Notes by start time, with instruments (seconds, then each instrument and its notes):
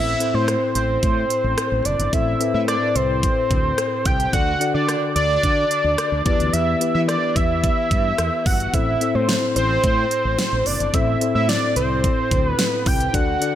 Already playing: fretless electric bass A1, tine electric piano A2 C4 E4 A4 C5, analog synth lead E5
0.20 tine electric piano C4 E4 A4 C5, closed hi-hat
0.34 fretless electric bass A2, analog synth lead C5
0.48 cross-stick, closed hi-hat
0.75 fretless electric bass A1, analog synth lead C5, closed hi-hat
1.03 fretless electric bass A2, kick, closed hi-hat
1.30 closed hi-hat
1.44 fretless electric bass A1
1.58 cross-stick, closed hi-hat
1.72 fretless electric bass A1
1.85 fretless electric bass F#1, analog synth lead D5, closed hi-hat
1.99 fretless electric bass G1, closed hi-hat
2.12 fretless electric bass A1, tine electric piano A2 C4 E4 A4 C5, analog synth lead E5, kick, closed hi-hat
2.40 tine electric piano C4 E4 A4 B4, closed hi-hat
2.48 tine electric piano C5
2.54 fretless electric bass A2, analog synth lead E5
2.68 analog synth lead D5, cross-stick, closed hi-hat
2.96 fretless electric bass C2, analog synth lead C5, closed hi-hat
3.23 kick, closed hi-hat
3.51 fretless electric bass D2, kick, closed hi-hat
3.78 cross-stick, closed hi-hat
4.05 fretless electric bass C2, analog synth lead G5, kick, closed hi-hat
4.20 closed hi-hat
4.32 fretless electric bass D2, tine electric piano D3 D4 F#4 A4 D5, analog synth lead F#5, kick, closed hi-hat
4.60 tine electric piano D4 F#4 A4 D5, closed hi-hat
4.74 fretless electric bass D3, analog synth lead D5
4.89 cross-stick, closed hi-hat
5.16 fretless electric bass D2, analog synth lead D5, closed hi-hat
5.43 fretless electric bass D3, kick, closed hi-hat
5.71 closed hi-hat
5.84 fretless electric bass D2
5.98 cross-stick, closed hi-hat
6.12 fretless electric bass D2
6.25 fretless electric bass E2, tine electric piano E3 B3 E4 G4 B4, analog synth lead D5, kick, closed hi-hat
6.40 fretless electric bass D2, closed hi-hat
6.53 fretless electric bass E2, analog synth lead E5, closed hi-hat
6.80 tine electric piano B3 E4 G4 B4, closed hi-hat
6.94 fretless electric bass E3, analog synth lead E5
7.08 analog synth lead D5, cross-stick, closed hi-hat
7.36 fretless electric bass E2, analog synth lead E5, kick, closed hi-hat
7.64 kick, closed hi-hat
7.91 fretless electric bass G2, kick, closed hi-hat
8.18 fretless electric bass E2, cross-stick, closed hi-hat
8.46 fretless electric bass G1, analog synth lead F#5, kick, open hi-hat
8.60 closed hi-hat
8.73 fretless electric bass A1, tine electric piano A2 C4 E4 A4 C5, analog synth lead E5, kick, closed hi-hat
9.01 tine electric piano C4 E4 A4 C5, closed hi-hat
9.15 fretless electric bass A2, analog synth lead C5
9.29 snare, closed hi-hat
9.56 fretless electric bass A1, analog synth lead C5, closed hi-hat
9.84 fretless electric bass A2, kick, closed hi-hat
10.11 closed hi-hat
10.25 fretless electric bass A1
10.39 snare, closed hi-hat
10.53 fretless electric bass A1
10.66 fretless electric bass F#1, analog synth lead D5, open hi-hat
10.80 fretless electric bass G1, closed hi-hat
10.93 fretless electric bass A1, tine electric piano A2 C4 E4 A4 C5, analog synth lead E5, kick, closed hi-hat
11.21 tine electric piano C4 E4 A4 C5, closed hi-hat
11.35 fretless electric bass A2, analog synth lead E5
11.49 analog synth lead D5, snare, closed hi-hat
11.76 fretless electric bass C2, analog synth lead C5, closed hi-hat
12.04 kick, closed hi-hat
12.31 fretless electric bass D2, kick, closed hi-hat
12.46 analog synth lead B4
12.59 snare, closed hi-hat
12.86 fretless electric bass C2, analog synth lead G5, kick, open hi-hat
13.00 closed hi-hat
13.13 fretless electric bass D2, tine electric piano D3 D4 F#4 A4 D5, analog synth lead F#5, kick, closed hi-hat
13.41 tine electric piano D4 F#4 A4 D5, closed hi-hat